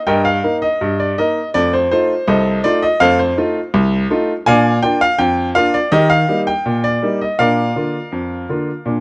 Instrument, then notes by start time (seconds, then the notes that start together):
upright piano
0.07 G2 A#4 D#5 G5
0.25 F5
0.43 A#3 D#4 A#4
0.62 D#5
0.81 G2
1.00 D5
1.18 A#3 D#4 A#4 D#5
1.54 F2 A3 D5
1.73 C5
1.91 A3 D#4 F4 C5
2.27 C2 A4 C5 D#5
2.64 A3 D#4 F4 D5
2.82 D#5
3.00 F2 A3 A4 C5 F5
3.19 C5
3.37 A3 D#4 F4
3.74 C2
4.10 A3 D#4 F4
4.46 A#2 D4 D5 F5 G#5
4.82 A#3 D4 F4 G5
5.01 F5
5.18 F2 G5
5.55 A#3 D4 F4 F5
5.74 D5
5.92 D#3 G4 A#4 D#5
6.10 F5
6.28 G3 A#3 D#4
6.47 G5
6.66 A#2
6.84 D5
7.02 G3 A#3 D#4
7.21 D#5
7.39 A#2 D4 A#4 D5 F5
7.76 D3 A#3 F4
8.12 F2
8.49 D3 A#3 F4
8.86 A#2 D4